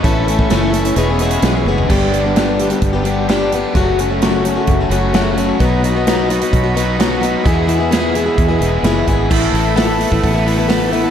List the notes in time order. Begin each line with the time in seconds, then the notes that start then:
0.03 A1 A2 E3 A3 C#4 E4 A4 E5 C#6, kick, closed hi-hat
0.27 A3 C#4 E4 A4, closed hi-hat
0.38 A3 C#4 E4 A4, kick
0.49 F#1 A2 E3 A3 C#4 E4 A4, snare, closed hi-hat
0.72 A3 C#4 E4 A4, closed hi-hat
0.84 A3 C#4 E4 A4, closed hi-hat
0.94 E1 E2 B2 E3 G#3 B3 C#4 E4 G#4, closed hi-hat
0.98 G#4
1.09 B3 C#4 G#4
1.19 G#3 B3 C#4 G#4, closed hi-hat
1.31 closed hi-hat
1.42 B1 E3 G#3 B3 C#4 G#4, snare, closed hi-hat
1.55 B3 C#4 G#4
1.65 F#1 G#3 B3 C#4 G#4, high tom
1.78 floor tom
1.90 G1 G2 D3 G3 B3 D4 G4, kick, crash
2.12 G3 B3 D4 G4, closed hi-hat
2.24 G3 B3 D4 G4
2.36 G2 D3 G3 B3 D4 G4, snare, closed hi-hat
2.59 G3 B3 D4 G4, closed hi-hat
2.70 G3 B3 D4 G4, closed hi-hat
2.82 G1, kick, closed hi-hat
2.93 G3 B3 D4 G4
3.03 G2 D3 G3 B3 D4 G4, closed hi-hat
3.07 G4
3.29 G2 D3 G3 B3 D4 G4, snare, closed hi-hat
3.52 G3 B3 D4 G4, closed hi-hat
3.75 F#1 F#2 C#3 F#3 A3 C#4 F#4, kick, closed hi-hat
3.99 F#3 A3 C#4 F#4, closed hi-hat
4.10 F#3 A3 C#4 F#4
4.22 F#2 C#3 F#3 A3 C#4 F#4, snare, closed hi-hat
4.45 F#3 A3 C#4 F#4, closed hi-hat
4.55 F#3 A3 C#4 F#4
4.67 F#1, kick, closed hi-hat
4.80 F#3 A3 C#4 F#4
4.90 F#1 F#2 C#3 F#3 A3 C#4 F#4, closed hi-hat
5.13 F#2 C#3 F#3 A3 C#4 F#4, snare, closed hi-hat
5.37 F#3 A3 C#4 F#4, closed hi-hat
5.59 B1 B2 F#3 B3 D#4 F#4 D#5 B5, kick, closed hi-hat
5.83 F#3 B3 D#4 F#4, closed hi-hat
5.95 B3 D#4 F#4
6.07 B2 F#3 B3 D#4 F#4, snare, closed hi-hat
6.29 F#3 B3 D#4 F#4, closed hi-hat
6.41 B3 D#4 F#4, closed hi-hat
6.53 B1, kick, closed hi-hat
6.64 B3 D#4 F#4
6.75 B2 F#3 B3 D#4 F#4, closed hi-hat
7.00 B2 F#3 B3 D#4 F#4, snare, closed hi-hat
7.21 F#3 B3 D#4 F#4, closed hi-hat
7.43 E2 B2 E3 G#3 B3 E4 G#4 E5, kick, closed hi-hat
7.67 E3 B3 E4 G#4, closed hi-hat
7.79 B3 E4 G#4
7.91 E3 B3 E4 G#4, snare, closed hi-hat
8.14 E3 B3 E4 G#4, closed hi-hat
8.26 B3 E4 G#4
8.38 E2, kick, closed hi-hat
8.48 B3 E4 G#4
8.58 E1 E2 B2 E3 G#3 B3 E4 G#4, closed hi-hat
8.63 G#4
8.83 F#1 E2 B2 E3 G#3 B3 E4 G#4, snare, closed hi-hat
9.07 G#1 E3 B3 E4 G#4, kick, closed hi-hat
9.29 A1 A2 A3 B3 E4 A4 E5 B5, kick, crash
9.53 A1 A3, open hi-hat
9.76 A3 B3 E4 A4, snare, open hi-hat
9.87 B3 E4 A4
9.98 A3 B3 E4 A4, open hi-hat
10.11 A1 B3 E4 A4, kick
10.22 A1 B3, kick, open hi-hat
10.33 B3 E4 A4
10.45 E3 A3 B3 E4 A4, open hi-hat
10.57 B3 E4 A4
10.68 A3 B3 E4 A4, snare, open hi-hat
10.92 E3 A3 B3 E4 A4, open hi-hat
11.04 B3 E4 A4